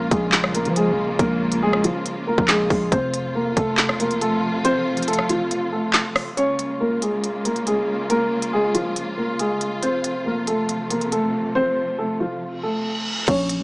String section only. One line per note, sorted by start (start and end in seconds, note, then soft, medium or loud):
0.00 2.89 C#3 medium
0.00 2.89 G#3 medium
0.00 2.89 A#3 medium
0.00 2.88 F4 medium
2.92 6.34 C3 medium
2.92 6.34 F3 medium
2.92 6.34 A3 medium
2.92 6.34 F4 loud
6.37 9.79 C#3 medium
6.37 9.79 G#3 medium
6.37 9.79 A#3 medium
6.37 13.24 F4 medium
9.83 13.24 C3 medium
9.83 13.25 F3 medium
9.83 13.24 A3 medium